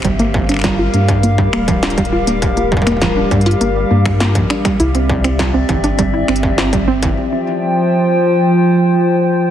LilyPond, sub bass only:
\new Staff \with { instrumentName = "Sub bass" } { \clef bass \time 4/4 \key g \dorian \tempo 4 = 101 g,,4. g,4 d,,4.~ | d,,4. g,8 g,,8 g,4 r8 | c,4. g,,4 g,,4. | r1 | }